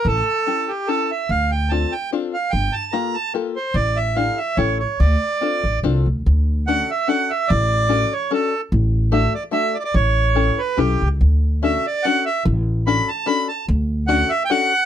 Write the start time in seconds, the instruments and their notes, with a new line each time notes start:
0.05 upright bass A1, accordion A4
0.47 five-string banjo C#4 E4 G4 A4
0.68 accordion G4
0.88 five-string banjo C#4 E4 G4 A4, accordion A4
1.11 accordion E5
1.29 upright bass D2, accordion F5
1.51 accordion G5
1.69 five-string banjo C4 D4 F4 A4, accordion A5
1.92 accordion G5
2.12 five-string banjo C4 D4 F4 A4
2.34 accordion F5
2.51 upright bass G1, accordion G5
2.73 accordion A5
2.92 five-string banjo A#3 F4 G4 A4, accordion A#5
3.14 accordion A5
3.34 five-string banjo A#3 F4 G4 A4
3.56 accordion C5
3.74 upright bass A1, accordion D5
3.97 accordion E5
4.16 five-string banjo D4 E4 G4 A4, accordion F5
4.37 accordion E5
4.57 upright bass A1, five-string banjo C#4 E4 G4 A4, accordion C#5
4.80 accordion C#5
4.99 upright bass D2, accordion D5
5.41 five-string banjo C4 D4 F4 A4
5.63 upright bass A1
5.83 upright bass C2, five-string banjo C4 D4 F4 A4
6.06 upright bass D2
6.26 upright bass D2
6.67 five-string banjo C#4 D4 F#4 A4, accordion F#5
6.91 accordion E5
7.08 five-string banjo C#4 D4 F#4 A4, accordion F#5
7.30 accordion E5
7.48 upright bass A1, accordion D5
7.89 five-string banjo C#4 D4 F#4 A4
8.13 accordion C#5
8.31 five-string banjo C#4 D4 F#4 A4, accordion A4
8.72 upright bass A1
9.12 five-string banjo A3 D4 F#4 A4, accordion E5
9.35 accordion D5
9.51 five-string banjo A3 D4 F#4 A4, accordion E5
9.75 accordion D5
9.79 accordion D5
9.85 accordion D5
9.94 upright bass A1, accordion C#5
10.35 five-string banjo C#4 E4 G4 A4
10.58 accordion B4
10.77 upright bass B1, five-string banjo C#4 E4 G4 A4, accordion G4
11.02 upright bass C#2
11.21 upright bass D2
11.63 five-string banjo C#4 D4 F#4 A4, accordion E5
11.87 accordion D5
12.03 five-string banjo C#4 D4 F#4 A4, accordion F#5
12.26 accordion E5
12.45 upright bass A1
12.87 five-string banjo C#4 D4 F#4 A4, accordion B5
13.08 accordion A5
13.26 five-string banjo C#4 D4 F#4 A4, accordion B5
13.48 accordion A5
13.68 upright bass D2
14.07 five-string banjo C#4 D4 F#4 A4, accordion F#5
14.30 accordion E5
14.45 accordion G5
14.50 five-string banjo C#4 D4 F#4 A4, accordion F#5